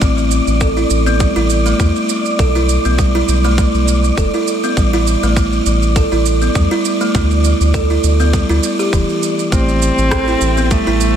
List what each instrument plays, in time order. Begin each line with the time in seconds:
Already playing: synth texture D5
0.01 analog synth bass A1, kalimba A3, kick, shaker
0.18 shaker
0.31 shaker
0.47 analog synth bass A1, shaker
0.61 kalimba A4, kick, shaker
0.77 kalimba E4, shaker
0.90 analog synth bass A1, shaker
1.06 kalimba B3, shaker
1.20 kalimba G3, kick, shaker
1.36 analog synth bass A1, kalimba E4, shaker
1.50 shaker
1.66 kalimba A3, shaker
1.79 analog synth bass E2, kalimba A3, kick, shaker
1.96 shaker
2.09 shaker
2.26 shaker
2.39 analog synth bass B1, kalimba A4, kick, shaker
2.55 kalimba E4, shaker
2.69 shaker
2.85 analog synth bass B1, kalimba B3, shaker
2.98 kalimba G3, kick, shaker
3.15 kalimba E4, shaker
3.28 analog synth bass B1, shaker
3.45 kalimba A3, shaker
3.58 kalimba A3, kick, shaker
3.74 analog synth bass B1, shaker
3.88 shaker
4.04 shaker
4.17 analog synth bass F1, kalimba A4, kick, shaker
4.34 kalimba E4, shaker
4.48 shaker
4.64 kalimba B3, shaker
4.77 analog synth bass A1, kalimba G3, kick, shaker
4.93 kalimba E4, shaker
5.07 shaker
5.23 analog synth bass A1, kalimba A3, shaker
5.36 kalimba A3, kick, shaker
5.53 shaker
5.66 analog synth bass A1, shaker
5.83 shaker
5.96 kalimba A4, kick, shaker
6.12 analog synth bass A1, kalimba E4, shaker
6.26 shaker
6.42 kalimba B3, shaker
6.55 analog synth bass E2, kalimba G3, kick, shaker
6.71 kalimba E4, shaker
6.85 shaker
7.01 kalimba A3, shaker
7.14 analog synth bass D2, kalimba A3, kick, shaker
7.31 shaker
7.44 shaker
7.61 analog synth bass D2, shaker
7.74 kalimba A4, kick, shaker
7.90 kalimba E4, shaker
8.04 analog synth bass D2, shaker
8.20 kalimba B3, shaker
8.33 kalimba G3, kick, shaker
8.49 analog synth bass D2, kalimba E4, shaker
8.63 shaker
8.79 kalimba G4, shaker
8.93 analog synth bass D1, kalimba E3, kick, shaker
9.09 shaker
9.23 shaker
9.39 shaker
9.52 analog synth bass A1, kalimba A3, cello C4, synth texture E5, kick, shaker
9.69 shaker
9.82 shaker
9.98 analog synth bass A1, shaker
10.11 kalimba A4, kick, cross-stick, shaker
10.28 kalimba E4, shaker
10.41 analog synth bass A1, shaker
10.57 kalimba B3, shaker
10.71 kalimba G3, cello A3, kick, shaker
10.87 analog synth bass A1, kalimba E4, shaker
11.01 shaker